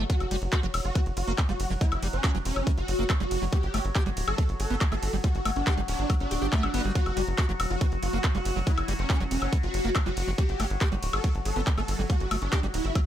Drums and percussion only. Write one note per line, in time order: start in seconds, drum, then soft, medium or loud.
0.10 kick loud
0.10 closed hi-hat loud
0.20 closed hi-hat soft
0.20 high woodblock soft
0.31 open hi-hat loud
0.31 ride medium
0.42 closed hi-hat soft
0.53 kick loud
0.53 clap loud
0.53 closed hi-hat loud
0.63 closed hi-hat soft
0.74 open hi-hat loud
0.74 ride medium
0.74 high woodblock medium
0.85 closed hi-hat soft
0.95 kick loud
0.95 closed hi-hat loud
1.06 closed hi-hat soft
1.17 open hi-hat loud
1.17 ride medium
1.28 closed hi-hat soft
1.38 kick loud
1.38 clap loud
1.38 closed hi-hat loud
1.38 high woodblock soft
1.49 closed hi-hat soft
1.60 open hi-hat loud
1.60 ride medium
1.81 kick loud
1.81 closed hi-hat loud
1.92 closed hi-hat soft
1.92 high woodblock medium
2.03 open hi-hat loud
2.03 ride medium
2.13 closed hi-hat soft
2.24 kick loud
2.24 clap loud
2.24 closed hi-hat loud
2.35 closed hi-hat soft
2.45 open hi-hat loud
2.45 ride medium
2.56 closed hi-hat soft
2.56 high woodblock soft
2.67 kick loud
2.67 closed hi-hat loud
2.78 closed hi-hat soft
2.88 open hi-hat loud
2.88 ride medium
2.99 closed hi-hat soft
3.10 kick loud
3.10 clap loud
3.10 closed hi-hat loud
3.10 high woodblock medium
3.20 closed hi-hat soft
3.31 open hi-hat loud
3.31 ride medium
3.53 kick loud
3.53 closed hi-hat medium
3.63 closed hi-hat soft
3.74 open hi-hat loud
3.74 ride medium
3.74 high woodblock soft
3.85 closed hi-hat soft
3.95 kick loud
3.95 clap loud
3.95 closed hi-hat medium
4.06 closed hi-hat soft
4.17 open hi-hat loud
4.17 ride medium
4.28 closed hi-hat soft
4.28 high woodblock medium
4.38 kick loud
4.38 closed hi-hat medium
4.49 closed hi-hat soft
4.60 open hi-hat loud
4.60 ride medium
4.70 closed hi-hat soft
4.81 kick loud
4.81 clap loud
4.81 closed hi-hat medium
4.92 closed hi-hat soft
4.92 high woodblock soft
5.03 open hi-hat loud
5.03 ride medium
5.24 kick loud
5.24 closed hi-hat medium
5.35 closed hi-hat soft
5.45 open hi-hat loud
5.45 ride medium
5.45 high woodblock medium
5.56 closed hi-hat soft
5.67 kick loud
5.67 clap loud
5.67 closed hi-hat medium
5.78 closed hi-hat soft
5.88 open hi-hat loud
5.88 ride medium
5.99 closed hi-hat soft
6.10 kick loud
6.10 closed hi-hat medium
6.10 high woodblock soft
6.20 closed hi-hat soft
6.31 open hi-hat loud
6.31 ride medium
6.42 closed hi-hat soft
6.53 kick loud
6.53 clap loud
6.53 closed hi-hat medium
6.63 closed hi-hat soft
6.63 high woodblock medium
6.74 open hi-hat loud
6.74 ride medium
6.85 closed hi-hat soft
6.95 kick loud
6.95 closed hi-hat medium
7.06 closed hi-hat soft
7.06 high woodblock soft
7.17 open hi-hat loud
7.17 ride medium
7.28 closed hi-hat soft
7.38 kick loud
7.38 clap loud
7.38 closed hi-hat medium
7.49 closed hi-hat soft
7.60 open hi-hat loud
7.60 ride medium
7.60 high woodblock medium
7.70 closed hi-hat soft
7.81 kick loud
7.81 closed hi-hat loud
7.92 closed hi-hat soft
8.03 open hi-hat loud
8.03 ride medium
8.13 closed hi-hat soft
8.24 kick loud
8.24 clap loud
8.24 closed hi-hat medium
8.24 high woodblock soft
8.35 closed hi-hat soft
8.45 open hi-hat loud
8.45 ride medium
8.67 kick loud
8.67 closed hi-hat loud
8.78 closed hi-hat soft
8.78 high woodblock medium
8.88 open hi-hat loud
8.88 ride medium
8.99 closed hi-hat soft
9.10 kick loud
9.10 clap loud
9.10 closed hi-hat loud
9.20 closed hi-hat soft
9.31 open hi-hat loud
9.31 ride medium
9.42 closed hi-hat soft
9.42 high woodblock soft
9.53 kick loud
9.53 closed hi-hat loud
9.63 closed hi-hat soft
9.74 open hi-hat loud
9.74 ride medium
9.85 closed hi-hat soft
9.95 kick loud
9.95 clap loud
9.95 closed hi-hat medium
9.95 high woodblock medium
10.06 closed hi-hat soft
10.17 open hi-hat loud
10.17 ride medium
10.38 kick loud
10.38 closed hi-hat loud
10.49 closed hi-hat soft
10.60 open hi-hat loud
10.60 ride medium
10.60 high woodblock soft
10.70 closed hi-hat soft
10.81 kick loud
10.81 clap loud
10.81 closed hi-hat loud
10.92 closed hi-hat soft
11.03 open hi-hat loud
11.03 ride medium
11.13 closed hi-hat soft
11.13 high woodblock medium
11.24 kick loud
11.24 closed hi-hat loud
11.35 closed hi-hat soft
11.45 open hi-hat loud
11.45 ride medium
11.56 closed hi-hat soft
11.67 kick loud
11.67 clap loud
11.67 closed hi-hat loud
11.78 closed hi-hat soft
11.78 high woodblock soft
11.88 open hi-hat loud
11.88 ride medium
12.10 kick loud
12.10 closed hi-hat loud
12.20 closed hi-hat soft
12.31 open hi-hat loud
12.31 ride medium
12.31 high woodblock medium
12.42 closed hi-hat soft
12.53 kick loud
12.53 clap loud
12.53 closed hi-hat loud
12.63 closed hi-hat soft
12.74 open hi-hat loud
12.74 ride medium
12.85 closed hi-hat soft
12.95 kick loud
12.95 closed hi-hat loud
12.95 high woodblock soft